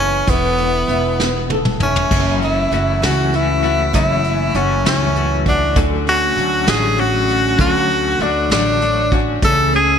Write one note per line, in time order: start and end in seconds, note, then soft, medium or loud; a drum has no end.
0.00 0.26 F#1 medium
0.00 0.30 E3 medium
0.00 0.59 B3 medium
0.00 0.31 C#4 medium
0.00 0.90 E4 medium
0.00 1.51 A4 medium
0.27 0.85 E1 medium
0.27 2.15 E3 medium
0.27 1.51 B3 medium
0.27 kick medium
0.27 closed hi-hat medium
0.58 1.19 B3 medium
0.58 closed hi-hat soft
0.88 1.76 E1 medium
0.88 1.82 E4 medium
0.88 closed hi-hat soft
1.20 2.18 B3 medium
1.20 snare soft
1.50 2.72 A4 medium
1.50 high tom medium
1.65 mid tom medium
1.80 2.09 E1 medium
1.80 2.39 C#4 medium
1.80 2.42 E4 medium
1.80 mid tom medium
1.96 floor tom medium
2.11 2.68 F#1 medium
2.11 2.41 F#2 medium
2.11 2.42 C#3 medium
2.11 2.42 E3 medium
2.11 2.41 A3 medium
2.11 2.41 C#4 medium
2.11 2.39 F#4 medium
2.11 kick loud
2.11 crash medium
2.41 2.71 E3 soft
2.41 2.71 A3 soft
2.41 2.72 C#4 soft
2.41 3.00 E4 medium
2.41 2.72 F#4 soft
2.41 closed hi-hat soft
2.72 3.01 F#1 medium
2.72 3.02 E3 soft
2.72 3.02 A3 soft
2.72 3.02 C#4 medium
2.72 3.01 F#4 medium
2.72 closed hi-hat soft
3.02 3.90 C#2 medium
3.02 3.34 F#2 medium
3.02 3.34 C#3 medium
3.02 3.32 E3 medium
3.02 3.33 A3 medium
3.02 3.33 C#4 medium
3.02 3.33 F#4 medium
3.02 3.37 F#4 medium
3.02 snare medium
3.02 closed hi-hat medium
3.33 3.64 E3 medium
3.33 3.63 A3 medium
3.33 3.62 C#4 medium
3.33 3.94 E4 medium
3.33 3.62 F#4 medium
3.33 closed hi-hat soft
3.63 3.94 E3 soft
3.63 3.94 A3 soft
3.63 3.94 C#4 soft
3.63 3.94 F#4 medium
3.63 closed hi-hat soft
3.94 4.51 F#1 medium
3.94 4.24 F#2 medium
3.94 4.25 C#3 medium
3.94 4.25 E3 medium
3.94 4.25 A3 medium
3.94 4.24 C#4 medium
3.94 4.57 E4 medium
3.94 4.23 F#4 medium
3.94 kick medium
3.94 closed hi-hat medium
4.24 4.54 E3 soft
4.24 4.55 A3 soft
4.24 4.55 C#4 soft
4.24 4.55 F#4 soft
4.24 closed hi-hat soft
4.54 4.83 F#1 medium
4.54 4.85 E3 soft
4.54 4.85 A3 medium
4.54 4.86 C#4 medium
4.54 4.85 C#4 medium
4.54 4.85 F#4 medium
4.54 closed hi-hat soft
4.85 5.72 C#2 medium
4.85 5.17 F#2 medium
4.85 5.17 C#3 medium
4.85 5.14 E3 medium
4.85 5.15 A3 medium
4.85 5.16 C#4 medium
4.85 5.43 C#4 medium
4.85 5.16 F#4 medium
4.85 snare medium
4.85 closed hi-hat medium
5.16 5.46 E3 medium
5.16 5.46 A3 medium
5.16 5.47 C#4 medium
5.16 5.45 F#4 medium
5.16 closed hi-hat soft
5.46 5.77 E3 soft
5.46 5.76 A3 soft
5.46 5.79 D4 medium
5.46 5.76 F#4 medium
5.46 kick medium
5.46 closed hi-hat soft
5.76 6.33 D2 medium
5.76 6.07 D3 medium
5.76 6.07 F#3 medium
5.76 6.07 A3 medium
5.76 6.06 C#4 medium
5.76 6.05 F#4 medium
5.76 kick loud
5.76 closed hi-hat medium
6.06 6.36 A3 soft
6.06 6.36 C#4 soft
6.06 6.37 F#4 medium
6.06 6.71 F#4 medium
6.06 closed hi-hat soft
6.36 6.65 D2 medium
6.36 6.67 F#3 medium
6.36 6.67 A3 medium
6.36 6.66 C#4 soft
6.36 6.66 F#4 medium
6.36 closed hi-hat soft
6.67 7.55 A1 medium
6.67 6.98 D3 medium
6.67 6.96 F#3 medium
6.67 6.97 A3 medium
6.67 6.98 C#4 medium
6.67 6.97 F#4 medium
6.67 7.01 G#4 medium
6.67 snare medium
6.67 closed hi-hat medium
6.97 7.28 F#3 medium
6.97 7.29 A3 medium
6.97 7.28 C#4 medium
6.97 7.27 F#4 medium
6.97 7.60 F#4 medium
6.97 closed hi-hat soft
7.28 7.58 A3 soft
7.28 7.59 C#4 soft
7.28 7.59 F#4 medium
7.28 closed hi-hat soft
7.58 8.16 D2 loud
7.58 7.89 D3 medium
7.58 7.90 F#3 medium
7.58 7.90 A3 medium
7.58 7.89 C#4 medium
7.58 7.88 F#4 medium
7.58 8.23 F#4 medium
7.58 kick loud
7.58 closed hi-hat medium
7.89 8.20 A3 soft
7.89 8.20 C#4 soft
7.89 8.20 F#4 medium
7.89 closed hi-hat soft
8.19 8.48 D2 medium
8.19 8.50 F#3 medium
8.19 8.50 A3 medium
8.19 8.52 D4 medium
8.19 8.50 F#4 medium
8.19 closed hi-hat soft
8.50 9.38 A1 medium
8.50 8.82 D3 soft
8.50 8.80 F#3 medium
8.50 8.81 A3 medium
8.50 9.17 D4 medium
8.50 8.81 F#4 medium
8.50 snare medium
8.50 closed hi-hat medium
8.81 9.12 F#3 medium
8.81 9.12 A3 medium
8.81 9.10 F#4 medium
8.81 closed hi-hat soft
9.12 9.42 A3 soft
9.12 9.42 C#4 soft
9.12 9.43 F#4 soft
9.12 kick medium
9.12 closed hi-hat soft
9.42 9.99 C#2 medium
9.42 9.73 C#3 medium
9.42 9.74 E3 medium
9.42 9.74 A3 medium
9.42 9.73 C#4 medium
9.42 9.72 A4 loud
9.42 kick loud
9.42 closed hi-hat medium
9.73 9.99 A3 soft
9.73 9.99 C#4 soft
9.73 9.99 G#4 soft
9.73 9.99 G#4 medium
9.73 closed hi-hat soft